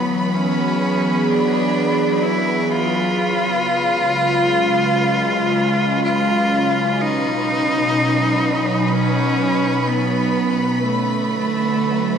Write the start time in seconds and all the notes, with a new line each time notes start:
Already playing: E3 F#3 B3 E4 B4 B5
0.34 C#4 G#4
1.29 D4
2.23 E4
2.71 F4
3.17 C#3
3.42 F4
3.67 G#3
3.86 C#4
6.04 F4
7.00 B2 D#4
7.04 B4 B5
7.59 F#3
8.18 D#4
8.87 D#4
8.92 C#4
9.87 B3
10.82 D3 A3
11.09 F#3
11.92 E4 F#4